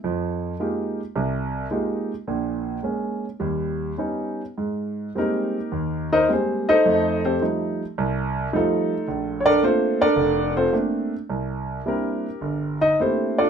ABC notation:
X:1
M:4/4
L:1/8
Q:"Swing" 1/4=107
K:Ab
V:1 name="Grand piano"
z8 | z8 | z2 [B,EGB]3 [EBce] [CGAc] [E=Ace]- | [E=Ace] [CGAc] z4 [=A,EFA]2- |
[=A,EF=A] [=DAB_d=d] [FAc] [DABd]2 [CFAc] z2 | z2 [GB]3 [Ee] [G=Ac] [=DFA=d] |]
V:2 name="Grand piano"
[F,,F,]2 [A,B,EFG] z [C,,C,]2 [A,B,EFG] z | [B,,,B,,]2 [A,B,D] z [E,,G,]2 [G,=B,DE] z | A,,2 [G,A,B,C] z E,,2 [G,A,B,C] z | [F,,=A,]2 [F,G,A,E] z C,,2 [F,G,A,E] z |
B,,,2 [=A,B,C=D] z F,,,2 [A,B,CD] z | C,,2 [G,B,C=D=E] z G,,,2 [=A,B,CDE] z |]